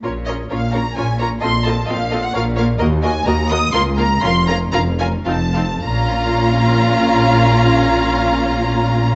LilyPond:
<<
  \new Staff \with { instrumentName = "Violin section" } { \time 3/4 \key bes \minor \tempo 4 = 121 r8 ees''8 f''8 bes''8 aes''8 bes''8 | c'''8 a''8 f''8. ges''16 f''8 f''8 | r8 aes''8 bes''8 ees'''8 c'''8 bes''8 | c'''8 bes''8 bes''8 aes''8 a''4 |
bes''2.~ | bes''2. | }
  \new Staff \with { instrumentName = "Violin section" } { \time 3/4 \key bes \minor <bes' des''>8 <bes' des''>8 <bes' des''>8 <bes' des''>8 <bes' des''>8 <bes' des''>8 | <a' ees''>8 <a' ees''>8 <a' ees''>8 <a' ees''>8 <bes' des''>8 <bes' des''>8 | <bes' ees''>8 <bes' ees''>8 <bes' ees''>8 <bes' ees''>8 <bes' f''>8 <bes' f''>8 | <bes' f''>8 <bes' f''>8 <bes' f''>8 <bes' f''>8 <f' f''>8 <f' f''>8 |
<f' f''>2.~ | <f' f''>2. | }
  \new Staff \with { instrumentName = "Viola section" } { \time 3/4 \key bes \minor <des' f'>8 <des' f'>8 <des' f'>8 <des' f'>8 <des' f'>8 <des' f'>8 | <c' f'>8 <c' f'>8 <c' f'>8 <c' f'>8 <bes f'>8 <bes f'>8 | <bes ges'>8 <bes ges'>8 <bes ges'>8 <bes ges'>8 <bes f'>8 <bes f'>8 | <des' f'>8 <des' f'>8 <des' f'>8 <des' f'>8 <c' ees'>8 <c' ees'>8 |
<des' f'>2.~ | <des' f'>2. | }
  \new Staff \with { instrumentName = "Cello section" } { \clef bass \time 3/4 \key bes \minor bes,4 bes,4 bes,4 | bes,4 bes,4 bes,4 | ees,4 ees,4 des,4 | f,4 f,4 f,4 |
bes,2.~ | bes,2. | }
  \new Staff \with { instrumentName = "Double bass section" } { \clef bass \time 3/4 \key bes \minor bes,,4 bes,,4 bes,,4 | bes,,4 bes,,4 bes,,4 | ees,4 ees,4 des,4 | f,,4 f,,4 f,,4 |
bes,,2.~ | bes,,2. | }
>>